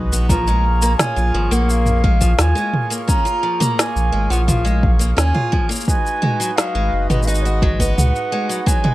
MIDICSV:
0, 0, Header, 1, 6, 480
1, 0, Start_track
1, 0, Tempo, 697674
1, 207, Time_signature, 4, 2, 24, 8
1, 6154, End_track
2, 0, Start_track
2, 0, Title_t, "Flute"
2, 0, Program_c, 0, 73
2, 199, Note_on_c, 0, 82, 105
2, 676, Note_on_c, 0, 80, 105
2, 686, Note_off_c, 0, 82, 0
2, 1047, Note_on_c, 0, 78, 90
2, 1057, Note_off_c, 0, 80, 0
2, 1171, Note_on_c, 0, 77, 93
2, 1181, Note_off_c, 0, 78, 0
2, 1656, Note_on_c, 0, 80, 103
2, 1666, Note_off_c, 0, 77, 0
2, 2011, Note_off_c, 0, 80, 0
2, 2123, Note_on_c, 0, 82, 107
2, 2607, Note_on_c, 0, 80, 107
2, 2617, Note_off_c, 0, 82, 0
2, 2961, Note_on_c, 0, 78, 91
2, 2972, Note_off_c, 0, 80, 0
2, 3079, Note_on_c, 0, 77, 94
2, 3090, Note_off_c, 0, 78, 0
2, 3377, Note_off_c, 0, 77, 0
2, 3562, Note_on_c, 0, 80, 97
2, 3899, Note_off_c, 0, 80, 0
2, 4038, Note_on_c, 0, 80, 104
2, 4512, Note_on_c, 0, 77, 94
2, 4522, Note_off_c, 0, 80, 0
2, 4868, Note_on_c, 0, 75, 83
2, 4879, Note_off_c, 0, 77, 0
2, 4985, Note_on_c, 0, 77, 76
2, 4992, Note_off_c, 0, 75, 0
2, 5008, Note_on_c, 0, 75, 83
2, 5014, Note_off_c, 0, 77, 0
2, 5102, Note_on_c, 0, 73, 76
2, 5109, Note_off_c, 0, 75, 0
2, 5125, Note_on_c, 0, 75, 83
2, 5131, Note_off_c, 0, 73, 0
2, 5472, Note_on_c, 0, 78, 101
2, 5482, Note_off_c, 0, 75, 0
2, 5964, Note_on_c, 0, 80, 105
2, 5974, Note_off_c, 0, 78, 0
2, 6154, Note_off_c, 0, 80, 0
2, 6154, End_track
3, 0, Start_track
3, 0, Title_t, "Harmonium"
3, 0, Program_c, 1, 20
3, 0, Note_on_c, 1, 56, 70
3, 0, Note_on_c, 1, 63, 71
3, 0, Note_on_c, 1, 66, 66
3, 0, Note_on_c, 1, 71, 80
3, 181, Note_off_c, 1, 66, 0
3, 183, Note_off_c, 1, 56, 0
3, 184, Note_off_c, 1, 63, 0
3, 185, Note_off_c, 1, 71, 0
3, 208, Note_on_c, 1, 65, 71
3, 209, Note_on_c, 1, 73, 79
3, 211, Note_on_c, 1, 58, 68
3, 211, Note_on_c, 1, 68, 64
3, 4020, Note_off_c, 1, 65, 0
3, 4020, Note_off_c, 1, 73, 0
3, 4022, Note_off_c, 1, 58, 0
3, 4022, Note_off_c, 1, 68, 0
3, 4042, Note_on_c, 1, 71, 76
3, 4046, Note_on_c, 1, 63, 70
3, 4046, Note_on_c, 1, 66, 65
3, 4047, Note_on_c, 1, 56, 78
3, 6154, Note_off_c, 1, 56, 0
3, 6154, Note_off_c, 1, 63, 0
3, 6154, Note_off_c, 1, 66, 0
3, 6154, Note_off_c, 1, 71, 0
3, 6154, End_track
4, 0, Start_track
4, 0, Title_t, "Steel-string acoustic guitar"
4, 0, Program_c, 2, 25
4, 85, Note_on_c, 2, 59, 62
4, 200, Note_off_c, 2, 59, 0
4, 205, Note_on_c, 2, 53, 70
4, 314, Note_off_c, 2, 53, 0
4, 327, Note_on_c, 2, 56, 74
4, 441, Note_off_c, 2, 56, 0
4, 566, Note_on_c, 2, 58, 76
4, 635, Note_off_c, 2, 58, 0
4, 685, Note_on_c, 2, 61, 72
4, 800, Note_off_c, 2, 61, 0
4, 801, Note_on_c, 2, 65, 66
4, 912, Note_off_c, 2, 65, 0
4, 925, Note_on_c, 2, 53, 72
4, 1034, Note_off_c, 2, 53, 0
4, 1041, Note_on_c, 2, 58, 88
4, 1392, Note_off_c, 2, 58, 0
4, 1402, Note_on_c, 2, 56, 73
4, 1512, Note_off_c, 2, 56, 0
4, 1519, Note_on_c, 2, 53, 70
4, 1591, Note_off_c, 2, 53, 0
4, 1642, Note_on_c, 2, 53, 74
4, 1752, Note_off_c, 2, 53, 0
4, 1757, Note_on_c, 2, 56, 70
4, 1876, Note_off_c, 2, 56, 0
4, 1998, Note_on_c, 2, 58, 71
4, 2071, Note_off_c, 2, 58, 0
4, 2116, Note_on_c, 2, 61, 80
4, 2235, Note_off_c, 2, 61, 0
4, 2237, Note_on_c, 2, 65, 73
4, 2350, Note_off_c, 2, 65, 0
4, 2359, Note_on_c, 2, 53, 67
4, 2471, Note_off_c, 2, 53, 0
4, 2479, Note_on_c, 2, 58, 93
4, 2831, Note_off_c, 2, 58, 0
4, 2838, Note_on_c, 2, 56, 65
4, 2950, Note_off_c, 2, 56, 0
4, 2960, Note_on_c, 2, 53, 73
4, 3032, Note_off_c, 2, 53, 0
4, 3081, Note_on_c, 2, 53, 72
4, 3192, Note_off_c, 2, 53, 0
4, 3197, Note_on_c, 2, 56, 75
4, 3316, Note_off_c, 2, 56, 0
4, 3435, Note_on_c, 2, 58, 75
4, 3509, Note_off_c, 2, 58, 0
4, 3554, Note_on_c, 2, 61, 80
4, 3674, Note_off_c, 2, 61, 0
4, 3677, Note_on_c, 2, 65, 73
4, 3790, Note_off_c, 2, 65, 0
4, 3798, Note_on_c, 2, 53, 73
4, 3910, Note_off_c, 2, 53, 0
4, 3915, Note_on_c, 2, 58, 84
4, 4041, Note_off_c, 2, 58, 0
4, 4279, Note_on_c, 2, 56, 65
4, 4391, Note_off_c, 2, 56, 0
4, 4402, Note_on_c, 2, 54, 68
4, 4473, Note_off_c, 2, 54, 0
4, 4524, Note_on_c, 2, 54, 80
4, 4633, Note_off_c, 2, 54, 0
4, 4644, Note_on_c, 2, 56, 68
4, 4759, Note_off_c, 2, 56, 0
4, 4884, Note_on_c, 2, 59, 73
4, 4954, Note_off_c, 2, 59, 0
4, 5005, Note_on_c, 2, 63, 76
4, 5120, Note_off_c, 2, 63, 0
4, 5128, Note_on_c, 2, 66, 71
4, 5235, Note_off_c, 2, 66, 0
4, 5246, Note_on_c, 2, 54, 74
4, 5354, Note_off_c, 2, 54, 0
4, 5365, Note_on_c, 2, 59, 91
4, 5714, Note_off_c, 2, 59, 0
4, 5725, Note_on_c, 2, 56, 76
4, 5834, Note_off_c, 2, 56, 0
4, 5844, Note_on_c, 2, 54, 67
4, 5914, Note_off_c, 2, 54, 0
4, 5960, Note_on_c, 2, 54, 72
4, 6072, Note_off_c, 2, 54, 0
4, 6081, Note_on_c, 2, 56, 75
4, 6154, Note_off_c, 2, 56, 0
4, 6154, End_track
5, 0, Start_track
5, 0, Title_t, "Sub bass"
5, 0, Program_c, 3, 38
5, 83, Note_on_c, 3, 34, 100
5, 655, Note_off_c, 3, 34, 0
5, 803, Note_on_c, 3, 34, 98
5, 906, Note_off_c, 3, 34, 0
5, 926, Note_on_c, 3, 32, 81
5, 1027, Note_off_c, 3, 32, 0
5, 1042, Note_on_c, 3, 34, 93
5, 1614, Note_off_c, 3, 34, 0
5, 1643, Note_on_c, 3, 39, 100
5, 1746, Note_off_c, 3, 39, 0
5, 2725, Note_on_c, 3, 34, 89
5, 2827, Note_off_c, 3, 34, 0
5, 2845, Note_on_c, 3, 32, 78
5, 2947, Note_off_c, 3, 32, 0
5, 2963, Note_on_c, 3, 34, 94
5, 3534, Note_off_c, 3, 34, 0
5, 3562, Note_on_c, 3, 39, 91
5, 3666, Note_off_c, 3, 39, 0
5, 4645, Note_on_c, 3, 32, 94
5, 4747, Note_off_c, 3, 32, 0
5, 4768, Note_on_c, 3, 30, 90
5, 4868, Note_off_c, 3, 30, 0
5, 4887, Note_on_c, 3, 32, 96
5, 5457, Note_off_c, 3, 32, 0
5, 5489, Note_on_c, 3, 37, 93
5, 5589, Note_off_c, 3, 37, 0
5, 6154, End_track
6, 0, Start_track
6, 0, Title_t, "Drums"
6, 88, Note_on_c, 9, 82, 66
6, 157, Note_off_c, 9, 82, 0
6, 202, Note_on_c, 9, 36, 98
6, 206, Note_on_c, 9, 82, 52
6, 271, Note_off_c, 9, 36, 0
6, 275, Note_off_c, 9, 82, 0
6, 326, Note_on_c, 9, 82, 33
6, 395, Note_off_c, 9, 82, 0
6, 564, Note_on_c, 9, 82, 63
6, 633, Note_off_c, 9, 82, 0
6, 684, Note_on_c, 9, 38, 98
6, 684, Note_on_c, 9, 45, 79
6, 687, Note_on_c, 9, 82, 54
6, 753, Note_off_c, 9, 38, 0
6, 753, Note_off_c, 9, 45, 0
6, 756, Note_off_c, 9, 82, 0
6, 806, Note_on_c, 9, 82, 30
6, 875, Note_off_c, 9, 82, 0
6, 1048, Note_on_c, 9, 82, 54
6, 1116, Note_off_c, 9, 82, 0
6, 1167, Note_on_c, 9, 82, 53
6, 1235, Note_off_c, 9, 82, 0
6, 1278, Note_on_c, 9, 45, 64
6, 1282, Note_on_c, 9, 82, 30
6, 1347, Note_off_c, 9, 45, 0
6, 1350, Note_off_c, 9, 82, 0
6, 1403, Note_on_c, 9, 36, 98
6, 1472, Note_off_c, 9, 36, 0
6, 1522, Note_on_c, 9, 82, 58
6, 1524, Note_on_c, 9, 36, 54
6, 1591, Note_off_c, 9, 82, 0
6, 1592, Note_off_c, 9, 36, 0
6, 1642, Note_on_c, 9, 38, 89
6, 1645, Note_on_c, 9, 82, 51
6, 1711, Note_off_c, 9, 38, 0
6, 1714, Note_off_c, 9, 82, 0
6, 1766, Note_on_c, 9, 82, 30
6, 1835, Note_off_c, 9, 82, 0
6, 1882, Note_on_c, 9, 45, 74
6, 1951, Note_off_c, 9, 45, 0
6, 2006, Note_on_c, 9, 82, 61
6, 2075, Note_off_c, 9, 82, 0
6, 2123, Note_on_c, 9, 36, 102
6, 2127, Note_on_c, 9, 82, 54
6, 2192, Note_off_c, 9, 36, 0
6, 2195, Note_off_c, 9, 82, 0
6, 2245, Note_on_c, 9, 82, 31
6, 2314, Note_off_c, 9, 82, 0
6, 2485, Note_on_c, 9, 45, 72
6, 2488, Note_on_c, 9, 82, 55
6, 2554, Note_off_c, 9, 45, 0
6, 2557, Note_off_c, 9, 82, 0
6, 2608, Note_on_c, 9, 38, 94
6, 2612, Note_on_c, 9, 82, 55
6, 2677, Note_off_c, 9, 38, 0
6, 2681, Note_off_c, 9, 82, 0
6, 2729, Note_on_c, 9, 82, 31
6, 2798, Note_off_c, 9, 82, 0
6, 2971, Note_on_c, 9, 82, 54
6, 3040, Note_off_c, 9, 82, 0
6, 3084, Note_on_c, 9, 36, 54
6, 3085, Note_on_c, 9, 45, 73
6, 3088, Note_on_c, 9, 82, 53
6, 3152, Note_off_c, 9, 36, 0
6, 3154, Note_off_c, 9, 45, 0
6, 3157, Note_off_c, 9, 82, 0
6, 3208, Note_on_c, 9, 82, 28
6, 3277, Note_off_c, 9, 82, 0
6, 3324, Note_on_c, 9, 36, 94
6, 3393, Note_off_c, 9, 36, 0
6, 3445, Note_on_c, 9, 82, 57
6, 3514, Note_off_c, 9, 82, 0
6, 3564, Note_on_c, 9, 38, 85
6, 3567, Note_on_c, 9, 82, 49
6, 3633, Note_off_c, 9, 38, 0
6, 3636, Note_off_c, 9, 82, 0
6, 3684, Note_on_c, 9, 45, 69
6, 3753, Note_off_c, 9, 45, 0
6, 3805, Note_on_c, 9, 36, 93
6, 3873, Note_off_c, 9, 36, 0
6, 3928, Note_on_c, 9, 82, 61
6, 3960, Note_off_c, 9, 82, 0
6, 3960, Note_on_c, 9, 82, 49
6, 3993, Note_off_c, 9, 82, 0
6, 3993, Note_on_c, 9, 82, 39
6, 4022, Note_off_c, 9, 82, 0
6, 4022, Note_on_c, 9, 82, 34
6, 4045, Note_on_c, 9, 36, 95
6, 4052, Note_off_c, 9, 82, 0
6, 4052, Note_on_c, 9, 82, 52
6, 4113, Note_off_c, 9, 36, 0
6, 4120, Note_off_c, 9, 82, 0
6, 4173, Note_on_c, 9, 82, 29
6, 4242, Note_off_c, 9, 82, 0
6, 4287, Note_on_c, 9, 45, 79
6, 4356, Note_off_c, 9, 45, 0
6, 4412, Note_on_c, 9, 82, 61
6, 4480, Note_off_c, 9, 82, 0
6, 4529, Note_on_c, 9, 38, 93
6, 4532, Note_on_c, 9, 82, 49
6, 4598, Note_off_c, 9, 38, 0
6, 4601, Note_off_c, 9, 82, 0
6, 4885, Note_on_c, 9, 45, 70
6, 4888, Note_on_c, 9, 82, 26
6, 4954, Note_off_c, 9, 45, 0
6, 4957, Note_off_c, 9, 82, 0
6, 4972, Note_on_c, 9, 82, 33
6, 5010, Note_off_c, 9, 82, 0
6, 5010, Note_on_c, 9, 82, 49
6, 5053, Note_off_c, 9, 82, 0
6, 5053, Note_on_c, 9, 82, 44
6, 5122, Note_off_c, 9, 82, 0
6, 5132, Note_on_c, 9, 82, 28
6, 5201, Note_off_c, 9, 82, 0
6, 5243, Note_on_c, 9, 36, 99
6, 5312, Note_off_c, 9, 36, 0
6, 5363, Note_on_c, 9, 36, 57
6, 5374, Note_on_c, 9, 82, 61
6, 5431, Note_off_c, 9, 36, 0
6, 5443, Note_off_c, 9, 82, 0
6, 5491, Note_on_c, 9, 45, 75
6, 5494, Note_on_c, 9, 82, 50
6, 5560, Note_off_c, 9, 45, 0
6, 5563, Note_off_c, 9, 82, 0
6, 5613, Note_on_c, 9, 82, 27
6, 5681, Note_off_c, 9, 82, 0
6, 5853, Note_on_c, 9, 82, 59
6, 5921, Note_off_c, 9, 82, 0
6, 5963, Note_on_c, 9, 36, 99
6, 5973, Note_on_c, 9, 82, 52
6, 6032, Note_off_c, 9, 36, 0
6, 6041, Note_off_c, 9, 82, 0
6, 6088, Note_on_c, 9, 45, 80
6, 6154, Note_off_c, 9, 45, 0
6, 6154, End_track
0, 0, End_of_file